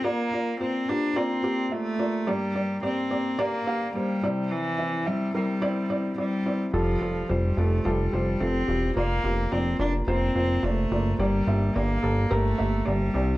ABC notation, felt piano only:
X:1
M:4/4
L:1/8
Q:"Swing 16ths" 1/4=108
K:Gdor
V:1 name="Felt piano"
[B,Fd] [B,Fd] [B,Fc] [B,FG] [B,Fd] [B,FG] [B,Fe] [B,Fd] | [B,Gd] [B,Gd] [B,Gd] [B,Gd] [B,Gd] [B,Gf] [B,Gc] [CEd]- | [CEd] [CEe] [CEe] [CEB] [CEd] [CEd] [CEd] [CEd] | [G,FA] [G,FA] [G,Fc] [G,FA] [G,FA] [G,Fc] [G,FA] [G,FG] |
[B,Fd] [B,FG] [B,Fd] [B,Fd] [B,Fc] [B,Fc] [B,Fd] [B,Fd] | [B,Gd] [B,Ge] [B,Gd] [B,GA] [B,GB] [B,Ge] [B,Gd] [CGd] |]
V:2 name="Felt piano" clef=bass
z8 | G,,3 z4 C,- | C,2 z6 | z8 |
z8 | G,,3 z4 C, |]